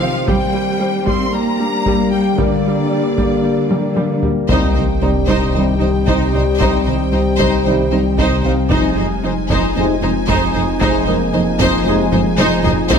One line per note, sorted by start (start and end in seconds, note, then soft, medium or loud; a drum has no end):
0.00 0.25 D#3 medium
0.00 0.17 D#3 medium
0.00 0.27 F3 medium
0.00 0.25 C4 medium
0.00 0.08 C4 soft
0.00 0.27 G4 medium
0.00 0.25 C5 medium
0.00 0.29 F5 medium
0.00 1.57 F5 soft
0.27 0.35 G3 medium
0.27 0.44 G3 medium
0.27 4.48 G3 medium
0.27 1.07 G3 medium
0.27 4.49 A#3 medium
0.27 4.45 G4 medium
0.27 4.49 D5 medium
0.27 1.08 G5 medium
0.27 taiko medium
0.53 0.61 G3 soft
0.53 0.70 A#3 medium
0.79 0.87 G3 medium
0.79 0.96 G4 medium
0.79 2.35 C5 soft
1.06 1.14 G3 medium
1.06 1.22 G3 medium
1.06 1.34 C4 medium
1.06 1.33 C6 medium
1.06 taiko medium
1.33 1.41 G3 soft
1.33 1.49 A#3 medium
1.33 2.11 A#3 medium
1.33 2.13 A#5 medium
1.59 1.67 G3 soft
1.59 1.76 D4 medium
1.86 2.02 G3 medium
1.86 1.94 G3 medium
1.86 taiko medium
2.12 2.20 G3 soft
2.12 2.38 G3 soft
2.12 2.28 A#3 medium
2.12 2.38 G5 medium
2.38 4.19 D3 medium
2.38 2.46 G3 medium
2.38 2.54 G3 medium
2.38 3.93 A#4 soft
2.38 4.23 D5 medium
2.38 taiko medium
2.65 2.73 G3 soft
2.65 2.81 A#3 medium
2.92 3.00 G3 soft
2.92 3.07 G4 soft
3.17 3.25 G3 soft
3.17 3.33 G3 medium
3.17 taiko medium
3.44 3.52 G3 soft
3.44 3.60 A#3 soft
3.70 3.78 G3 soft
3.70 3.87 D4 soft
3.70 taiko high medium
3.95 4.03 G3 medium
3.95 4.13 G3 medium
3.95 4.45 D5 soft
3.95 taiko high medium
4.23 4.31 G3 soft
4.23 4.40 A#3 soft
4.23 taiko low medium
4.49 8.72 C2 medium
4.49 4.57 C2 medium
4.49 4.58 C2 medium
4.49 4.67 C3 soft
4.49 4.66 C3 medium
4.49 4.68 G3 soft
4.49 8.67 G3 medium
4.49 8.67 C4 medium
4.49 4.69 C4 soft
4.49 4.74 D#4 medium
4.49 4.69 D#4 soft
4.49 8.67 G4 medium
4.49 4.73 C5 medium
4.49 8.67 C5 medium
4.49 8.67 G5 soft
4.49 taiko medium
4.49 sub drop medium
4.75 4.83 C2 soft
4.75 4.84 C2 soft
4.75 4.92 D#3 medium
4.75 4.83 D#4 soft
4.75 4.83 C5 soft
5.01 5.10 C2 soft
5.01 5.11 C2 soft
5.01 5.18 C4 medium
5.01 6.57 D4 soft
5.01 5.10 D#4 soft
5.01 5.09 C5 soft
5.01 6.33 D5 soft
5.27 5.35 C2 medium
5.27 5.37 C2 medium
5.27 5.44 C3 medium
5.27 5.53 D#4 medium
5.27 5.52 C5 medium
5.27 taiko medium
5.54 5.63 C2 soft
5.54 5.73 C3 medium
5.54 5.71 D#3 medium
5.54 5.73 G3 medium
5.54 5.74 C4 soft
5.54 5.62 D#4 soft
5.54 5.74 D#4 soft
5.54 5.63 C5 soft
5.79 5.88 C2 soft
5.79 5.89 C2 soft
5.79 5.97 D#3 medium
5.79 5.87 D#4 soft
5.79 5.89 C5 soft
6.06 6.15 C2 medium
6.06 6.16 C2 medium
6.06 6.23 C3 medium
6.06 6.31 D#4 medium
6.06 6.32 C5 soft
6.06 taiko medium
6.33 6.42 C2 soft
6.33 6.43 C2 soft
6.33 6.49 C4 medium
6.33 6.41 D#4 soft
6.33 6.42 C5 soft
6.33 7.88 D5 soft
6.59 6.68 C2 medium
6.59 6.69 C2 medium
6.59 6.76 C3 medium
6.59 6.78 C3 soft
6.59 6.79 G3 soft
6.59 6.79 C4 medium
6.59 6.84 D#4 medium
6.59 6.79 D#4 medium
6.59 6.84 C5 medium
6.59 taiko medium
6.86 6.95 C2 soft
6.86 7.02 D#3 medium
6.86 6.94 D#4 soft
6.86 6.95 C5 soft
7.12 7.21 C2 soft
7.12 7.29 C4 medium
7.12 7.20 D#4 soft
7.12 7.20 C5 soft
7.37 7.47 C2 medium
7.37 7.54 C3 medium
7.37 7.63 D#4 medium
7.37 7.63 C5 medium
7.37 taiko medium
7.65 7.73 C2 soft
7.65 7.74 C2 soft
7.65 7.83 C3 medium
7.65 7.81 D#3 medium
7.65 7.84 G3 medium
7.65 7.84 C4 soft
7.65 7.74 D#4 soft
7.65 7.84 D#4 soft
7.65 7.74 C5 soft
7.91 8.00 C2 soft
7.91 8.08 D#3 medium
7.91 7.99 D#4 soft
7.91 7.99 C5 soft
8.18 8.26 C2 medium
8.18 8.34 C3 medium
8.18 8.42 D#4 medium
8.18 8.42 C5 medium
8.18 taiko medium
8.44 8.52 C2 soft
8.44 8.53 C2 soft
8.44 8.60 C4 medium
8.44 8.52 D#4 soft
8.44 8.52 C5 soft
8.44 9.99 F5 soft
8.70 12.92 F1 medium
8.70 8.79 F1 medium
8.70 8.78 F2 medium
8.70 8.89 C3 soft
8.70 8.86 F3 medium
8.70 12.92 F3 medium
8.70 8.89 G#3 soft
8.70 12.88 C4 medium
8.70 8.90 C4 medium
8.70 8.95 D#4 medium
8.70 8.90 D#4 medium
8.70 12.92 G#4 medium
8.70 8.95 C5 medium
8.70 12.88 D#5 medium
8.70 12.88 G#5 medium
8.70 taiko medium
8.96 9.06 F1 soft
8.96 9.04 F2 soft
8.96 9.13 G#3 medium
8.96 9.06 D#4 soft
8.96 9.06 C5 soft
9.23 9.32 F1 soft
9.23 9.31 F2 soft
9.23 9.31 D#4 soft
9.23 9.40 D#4 medium
9.23 9.32 C5 soft
9.50 9.59 F1 medium
9.50 9.58 F2 medium
9.50 9.66 F3 medium
9.50 9.74 D#4 medium
9.50 9.74 C5 medium
9.50 taiko medium
9.76 9.85 F1 soft
9.76 9.84 F2 soft
9.76 9.94 C3 medium
9.76 9.95 G#3 medium
9.76 9.92 G#3 medium
9.76 9.95 C4 medium
9.76 9.84 D#4 soft
9.76 9.95 D#4 medium
9.76 9.84 C5 soft
10.02 10.12 F1 soft
10.02 10.10 F2 medium
10.02 10.19 G#3 medium
10.02 10.10 D#4 soft
10.02 10.10 C5 medium
10.28 10.37 F1 medium
10.28 10.36 F2 medium
10.28 10.45 F3 medium
10.28 10.53 D#4 medium
10.28 10.53 C5 medium
10.28 taiko medium
10.54 10.64 F1 soft
10.54 10.62 F2 soft
10.54 10.63 D#4 soft
10.54 10.71 D#4 medium
10.54 10.62 C5 medium
10.80 10.90 F1 medium
10.80 10.88 F2 medium
10.80 11.00 C3 medium
10.80 10.97 F3 medium
10.80 11.00 G#3 medium
10.80 11.00 C4 medium
10.80 11.05 D#4 medium
10.80 11.00 D#4 medium
10.80 11.05 C5 medium
10.80 taiko medium
11.06 11.15 F1 soft
11.06 11.15 F2 soft
11.06 11.23 G#3 medium
11.06 12.62 A#3 soft
11.06 11.15 D#4 soft
11.06 12.62 A#4 soft
11.06 11.14 C5 soft
11.33 11.42 F1 soft
11.33 11.42 F2 medium
11.33 11.42 D#4 medium
11.33 11.50 D#4 medium
11.33 11.41 C5 soft
11.59 11.68 F1 medium
11.59 11.68 F2 medium
11.59 11.75 F3 medium
11.59 11.84 D#4 medium
11.59 11.84 C5 medium
11.59 taiko medium
11.86 11.94 F1 soft
11.86 11.94 F2 soft
11.86 12.04 C3 medium
11.86 12.04 G#3 medium
11.86 12.02 G#3 medium
11.86 12.05 C4 medium
11.86 11.94 D#4 medium
11.86 12.05 D#4 medium
11.86 11.95 C5 soft
12.12 12.20 F1 medium
12.12 12.20 F2 medium
12.12 12.29 G#3 medium
12.12 12.20 D#4 medium
12.12 12.20 C5 medium
12.12 taiko low-mid medium
12.38 12.47 F1 medium
12.38 12.47 F2 medium
12.38 12.55 F3 medium
12.38 12.63 D#4 medium
12.38 12.62 C5 medium
12.38 taiko high medium
12.63 12.73 F1 medium
12.63 12.73 F2 medium
12.63 12.72 D#4 medium
12.63 12.80 D#4 medium
12.63 12.71 C5 medium
12.63 taiko low medium
12.89 12.99 C2 medium
12.89 12.99 C3 medium
12.89 12.99 G3 medium
12.89 12.99 C4 medium
12.89 12.99 D#4 medium
12.89 12.99 C5 medium
12.89 12.99 G5 medium
12.89 taiko medium